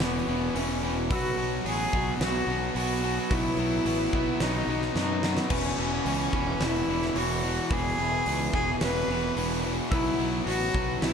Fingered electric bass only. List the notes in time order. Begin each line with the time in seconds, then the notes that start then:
0.00 E1
0.27 E1
0.55 E1
1.10 B1
1.37 B1
1.65 A1
1.93 B1
2.20 B1
2.47 B1
2.75 B1
3.31 B1
3.57 B1
3.85 A1
4.13 B1
4.40 B1
4.67 B1
4.95 F#2
5.50 E1
5.77 E1
6.05 C#2
6.33 E1
6.60 E1
6.88 E1
7.16 E1
7.71 E1
7.98 E1
8.26 C#2
8.53 E1
8.81 E1
9.08 E1
9.36 E1
9.91 B1
10.19 B1
10.46 A1
10.74 B1
11.02 B1